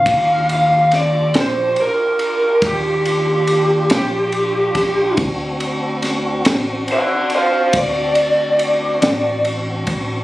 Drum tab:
RD |xxxxxxxxxxxx|xxxxxxxxxxxx|
SD |--oo-----o-o|--oo-----o--|
BD |o-----o----o|o-----o----o|